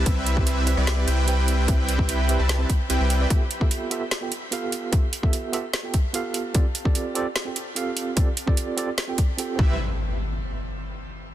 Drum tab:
HH |x-x-x-x-x-x-x-x-|x-x-x-x-x-x-x-x-|x-x-x-x-x-x-x-x-|x-x-x-x-x-x-x-x-|
SD |--------o-------|--------o-------|--------o-------|--------o-------|
BD |o--o------------|o--o------o-----|o--o------------|o--o------o-----|

HH |x-x-x-x-x-x-x-x-|x-x-x-x-x-x-x---|----------------|
SD |--------o-------|--------o-------|----------------|
BD |o--o------------|o--o------o---o-|----------------|